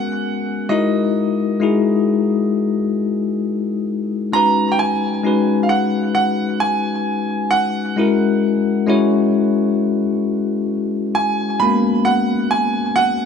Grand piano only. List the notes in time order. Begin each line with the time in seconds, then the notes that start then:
Already playing: F#5
0.69 D#5
4.33 A#5
4.72 G5
4.79 G#5
5.63 F5
5.69 F#5
6.15 F#5
6.60 G#5
7.51 F#5
11.15 G#5
11.60 B5
12.05 F#5
12.51 G#5
12.96 F#5